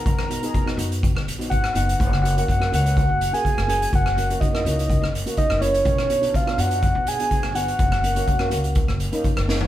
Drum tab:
HH |x-xxx-xxx-xxx-xx|x-xxx-xxx-xxx-xx|x-xxx-xxx-xxx-xx|x-xxx-xxx-xxx-xx|
SD |-r---r---r---r--|-r---r-------r--|-r---r---r---r--|-r---r-------r--|
FT |----------------|----------------|----------------|----------------|
BD |o---o---o---o---|o---o---o---o---|o---o---o---o---|o---o---o---o---|

HH |x-xxx-xxx-xxx---|
SD |-r---r---r---ro-|
FT |---------------o|
BD |o---o---o---o---|